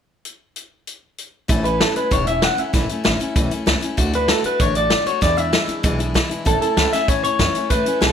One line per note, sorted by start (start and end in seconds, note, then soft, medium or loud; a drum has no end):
0.25 closed hi-hat medium
0.56 closed hi-hat medium
0.87 closed hi-hat medium
1.18 closed hi-hat medium
1.48 1.82 A1 medium
1.48 1.64 A2 medium
1.48 1.64 E3 medium
1.48 1.65 A3 medium
1.48 1.65 C#4 medium
1.48 1.63 E4 medium
1.48 kick loud
1.48 closed hi-hat medium
1.64 1.80 A3 soft
1.64 1.81 C#4 medium
1.64 1.80 E4 medium
1.64 1.80 B4 medium
1.64 closed hi-hat medium
1.80 1.96 E3 medium
1.80 1.96 A3 medium
1.80 1.96 C#4 medium
1.80 1.95 E4 medium
1.80 1.96 A4 medium
1.80 snare loud
1.80 closed hi-hat medium
1.95 2.11 A3 soft
1.95 2.11 C#4 soft
1.95 2.11 E4 soft
1.95 2.12 B4 medium
1.95 muted upright bass stroke medium
1.95 closed hi-hat medium
2.11 2.44 E1 medium
2.11 2.26 A2 medium
2.11 2.27 E3 medium
2.11 2.27 A3 medium
2.11 2.27 C#4 medium
2.11 2.25 E4 medium
2.11 2.27 C#5 medium
2.11 kick loud
2.11 closed hi-hat medium
2.26 2.43 A3 soft
2.26 2.43 C#4 soft
2.26 2.42 E4 soft
2.26 2.44 E5 loud
2.26 closed hi-hat medium
2.42 2.58 E3 medium
2.42 2.59 A3 medium
2.42 2.58 C#4 medium
2.42 2.56 E4 medium
2.42 2.59 F#5 loud
2.42 snare loud
2.42 closed hi-hat medium
2.58 2.73 A3 soft
2.58 2.73 C#4 medium
2.58 2.73 E4 medium
2.58 3.52 E5 medium
2.58 muted upright bass stroke medium
2.58 closed hi-hat medium
2.73 2.84 A1 loud
2.73 2.89 A2 medium
2.73 2.89 E3 medium
2.73 2.89 A3 medium
2.73 2.89 C#4 medium
2.73 2.88 E4 medium
2.73 kick loud
2.73 snare soft
2.73 closed hi-hat medium
2.89 3.03 A3 soft
2.89 3.04 C#4 medium
2.89 3.05 E4 soft
2.89 muted upright bass stroke medium
2.89 closed hi-hat medium
3.04 3.18 A1 medium
3.04 3.20 E3 medium
3.04 3.20 A3 medium
3.04 3.20 C#4 medium
3.04 3.19 E4 medium
3.04 snare loud
3.04 closed hi-hat medium
3.20 3.36 A3 medium
3.20 3.36 C#4 medium
3.20 3.35 E4 medium
3.20 muted upright bass stroke medium
3.20 closed hi-hat medium
3.36 3.49 B1 medium
3.36 3.51 A2 medium
3.36 3.51 E3 medium
3.36 3.52 A3 medium
3.36 3.51 C#4 medium
3.36 3.50 E4 medium
3.36 kick loud
3.36 closed hi-hat medium
3.51 3.66 A3 soft
3.51 3.67 C#4 medium
3.51 3.66 E4 medium
3.51 muted upright bass stroke medium
3.51 closed hi-hat medium
3.66 3.80 C#2 medium
3.66 3.82 E3 medium
3.66 3.82 A3 medium
3.66 3.82 C#4 medium
3.66 3.80 E4 medium
3.66 snare loud
3.66 closed hi-hat medium
3.81 3.97 A3 medium
3.81 3.98 C#4 medium
3.81 3.97 E4 medium
3.81 muted upright bass stroke medium
3.81 closed hi-hat medium
3.97 4.30 D2 medium
3.97 4.13 D3 medium
3.97 4.13 A3 medium
3.97 4.13 D4 medium
3.97 4.12 F#4 loud
3.97 kick loud
3.97 closed hi-hat medium
4.13 4.28 A3 soft
4.13 4.29 D4 medium
4.13 4.29 F#4 medium
4.13 4.30 B4 medium
4.13 closed hi-hat medium
4.28 4.44 D3 medium
4.28 4.45 A3 medium
4.28 4.45 D4 medium
4.28 4.43 F#4 medium
4.28 4.45 A4 medium
4.28 snare loud
4.28 closed hi-hat medium
4.44 4.60 A3 soft
4.44 4.61 D4 soft
4.44 4.60 F#4 medium
4.44 4.61 B4 medium
4.44 muted upright bass stroke medium
4.44 closed hi-hat medium
4.60 4.92 A1 medium
4.60 4.75 D3 medium
4.60 4.76 A3 medium
4.60 4.75 D4 medium
4.60 4.74 F#4 medium
4.60 4.76 C#5 medium
4.60 kick loud
4.60 closed hi-hat medium
4.75 4.91 A3 soft
4.75 4.91 D4 soft
4.75 4.91 F#4 soft
4.75 5.06 D5 loud
4.75 closed hi-hat medium
4.90 5.06 D3 medium
4.90 5.07 A3 medium
4.90 5.07 D4 medium
4.90 5.05 F#4 medium
4.90 snare loud
4.90 closed hi-hat medium
5.06 5.22 A3 soft
5.06 5.21 D4 medium
5.06 5.22 F#4 medium
5.06 5.21 C#5 medium
5.06 muted upright bass stroke medium
5.06 closed hi-hat medium
5.21 5.37 E2 medium
5.21 5.55 E2 medium
5.21 5.37 B2 medium
5.21 5.38 E3 medium
5.21 5.37 G#3 medium
5.21 5.37 D4 medium
5.21 5.36 E4 medium
5.21 5.37 D5 loud
5.21 kick loud
5.21 snare soft
5.21 closed hi-hat medium
5.37 5.51 E3 medium
5.37 5.52 G#3 soft
5.37 5.53 D4 medium
5.37 5.53 E4 medium
5.37 5.99 E5 loud
5.37 closed hi-hat medium
5.53 5.68 E3 medium
5.53 5.69 G#3 medium
5.53 5.68 D4 medium
5.53 5.67 E4 medium
5.53 snare loud
5.53 closed hi-hat medium
5.68 5.83 E3 soft
5.68 5.84 G#3 soft
5.68 5.84 D4 soft
5.68 5.84 E4 medium
5.68 muted upright bass stroke medium
5.68 closed hi-hat medium
5.83 6.17 B1 medium
5.83 5.99 E2 medium
5.83 6.00 B2 medium
5.83 6.00 E3 medium
5.83 6.00 G#3 medium
5.83 5.99 D4 medium
5.83 5.98 E4 medium
5.83 kick loud
5.83 closed hi-hat medium
5.99 6.13 E3 soft
5.99 6.14 G#3 soft
5.99 6.15 D4 medium
5.99 6.15 E4 medium
5.99 closed hi-hat medium
6.14 6.30 E3 medium
6.14 6.30 G#3 medium
6.14 6.30 D4 medium
6.14 6.28 E4 medium
6.14 kick medium
6.14 snare loud
6.14 closed hi-hat medium
6.29 6.45 E3 medium
6.29 6.45 G#3 medium
6.29 6.46 D4 medium
6.29 6.45 E4 medium
6.29 muted upright bass stroke medium
6.29 closed hi-hat medium
6.45 6.61 A1 medium
6.45 6.61 A2 medium
6.45 6.61 E3 medium
6.45 6.61 A3 medium
6.45 6.62 C#4 medium
6.45 6.61 E4 medium
6.45 6.60 A4 medium
6.45 kick loud
6.45 closed hi-hat medium
6.61 6.77 A3 soft
6.61 6.78 C#4 medium
6.61 6.77 E4 medium
6.61 6.90 A4 medium
6.61 muted upright bass stroke medium
6.61 closed hi-hat medium
6.77 6.92 C#2 medium
6.77 6.93 E3 medium
6.77 6.93 A3 medium
6.77 6.93 C#4 medium
6.77 6.91 E4 medium
6.77 snare medium
6.77 closed hi-hat medium
6.93 7.08 A3 soft
6.93 7.09 C#4 medium
6.93 7.08 E4 medium
6.93 7.08 E5 loud
6.93 muted upright bass stroke medium
6.93 snare soft
6.93 closed hi-hat medium
7.08 7.23 E2 medium
7.08 7.24 A2 medium
7.08 7.24 E3 medium
7.08 7.24 A3 medium
7.08 7.23 C#4 medium
7.08 7.22 E4 medium
7.08 7.23 C#5 loud
7.08 kick loud
7.08 closed hi-hat medium
7.23 7.38 A3 soft
7.23 7.40 C#4 soft
7.23 7.39 E4 soft
7.23 7.72 C#5 loud
7.23 muted upright bass stroke soft
7.23 closed hi-hat medium
7.39 7.54 F#2 loud
7.39 7.55 E3 medium
7.39 7.55 A3 medium
7.39 7.55 C#4 medium
7.39 7.53 E4 medium
7.39 kick medium
7.39 snare loud
7.39 closed hi-hat medium
7.54 7.70 A3 soft
7.54 7.71 C#4 medium
7.54 7.70 E4 medium
7.54 muted upright bass stroke medium
7.54 closed hi-hat medium
7.70 7.85 E2 medium
7.70 7.86 A2 medium
7.70 7.86 E3 medium
7.70 7.86 A3 medium
7.70 7.86 C#4 medium
7.70 7.85 E4 medium
7.70 8.01 B4 medium
7.70 kick loud
7.70 closed hi-hat medium
7.86 8.00 A3 soft
7.86 8.01 C#4 medium
7.86 8.01 E4 medium
7.86 closed hi-hat medium
8.01 8.12 B1 loud
8.01 8.12 E3 medium
8.01 8.12 A3 medium
8.01 8.12 C#4 medium
8.01 8.12 E4 medium
8.01 8.12 A4 medium
8.01 snare loud
8.01 closed hi-hat medium